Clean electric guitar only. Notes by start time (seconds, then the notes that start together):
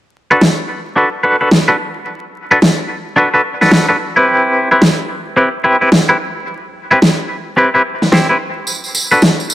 0.31 D4 F#4 A4 B4
0.96 D4 F#4 A4 B4
1.23 D4 F#4 A4 B4
1.41 D4 F#4 A4 B4
1.68 D4 F#4 A4 B4
2.51 D4 F#4 A4 B4
3.16 D4 F#4 A4 B4
3.34 D4 F#4 A4 B4
3.61 D4 F#4 A4 B4
3.88 D4 F#4 A4 B4
4.16 C4 E4 G4 B4
4.71 C4 E4 G4 B4
5.37 C4 E4 G4 B4
5.64 C4 E4 G4 B4
5.81 C4 E4 G4 B4
6.09 C4 E4 G4 B4
6.91 C4 E4 G4 B4
7.57 C4 E4 G4 B4
7.74 C4 E4 G4 B4
8.12 C4 E4 G4 C5
8.29 C4 E4 G4 B4
9.11 D4 F#4 A4 B4